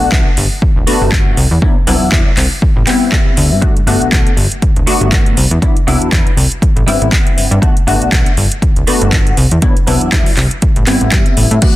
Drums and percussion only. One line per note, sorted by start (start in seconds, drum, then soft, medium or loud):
0.12 kick loud
0.12 clap loud
0.37 open hi-hat loud
0.62 kick loud
0.87 open hi-hat loud
1.12 kick loud
1.12 clap loud
1.37 open hi-hat loud
1.62 kick loud
1.87 open hi-hat loud
2.12 kick loud
2.12 clap loud
2.37 clap medium
2.37 open hi-hat loud
2.62 kick loud
2.87 clap medium
2.87 open hi-hat loud
3.12 kick loud
3.12 clap loud
3.37 open hi-hat loud
3.62 kick loud
3.62 closed hi-hat medium
3.77 closed hi-hat soft
3.87 open hi-hat loud
4.02 closed hi-hat soft
4.12 kick loud
4.12 clap loud
4.12 closed hi-hat medium
4.27 closed hi-hat soft
4.37 open hi-hat loud
4.52 closed hi-hat soft
4.62 kick loud
4.62 closed hi-hat medium
4.76 closed hi-hat soft
4.87 open hi-hat loud
5.01 closed hi-hat soft
5.12 kick loud
5.12 clap loud
5.12 closed hi-hat medium
5.26 closed hi-hat soft
5.37 open hi-hat loud
5.51 closed hi-hat soft
5.62 kick loud
5.62 closed hi-hat medium
5.77 closed hi-hat soft
5.88 open hi-hat medium
6.02 closed hi-hat soft
6.12 kick loud
6.12 clap loud
6.12 closed hi-hat medium
6.27 closed hi-hat soft
6.37 open hi-hat loud
6.52 closed hi-hat soft
6.62 kick loud
6.62 closed hi-hat medium
6.77 closed hi-hat soft
6.88 open hi-hat loud
7.02 closed hi-hat soft
7.12 kick loud
7.12 clap loud
7.12 closed hi-hat medium
7.27 closed hi-hat soft
7.38 open hi-hat loud
7.52 closed hi-hat soft
7.62 kick loud
7.62 closed hi-hat medium
7.77 closed hi-hat soft
7.88 open hi-hat medium
8.02 closed hi-hat soft
8.12 kick loud
8.12 clap loud
8.12 closed hi-hat medium
8.26 closed hi-hat soft
8.37 open hi-hat loud
8.52 closed hi-hat soft
8.62 kick loud
8.62 closed hi-hat medium
8.76 closed hi-hat soft
8.87 open hi-hat loud
9.02 closed hi-hat soft
9.12 kick loud
9.12 clap loud
9.12 closed hi-hat medium
9.27 closed hi-hat soft
9.37 open hi-hat loud
9.51 closed hi-hat soft
9.62 kick loud
9.62 closed hi-hat medium
9.77 closed hi-hat soft
9.87 open hi-hat loud
10.01 closed hi-hat soft
10.12 kick loud
10.12 clap loud
10.12 closed hi-hat medium
10.26 open hi-hat medium
10.37 clap medium
10.37 open hi-hat medium
10.51 closed hi-hat soft
10.62 kick loud
10.62 closed hi-hat medium
10.76 closed hi-hat soft
10.87 clap medium
10.87 open hi-hat loud
11.01 closed hi-hat soft
11.12 kick loud
11.12 clap loud
11.12 closed hi-hat medium
11.26 closed hi-hat soft
11.37 open hi-hat loud
11.51 closed hi-hat soft
11.62 kick loud
11.62 closed hi-hat medium
11.62 crash medium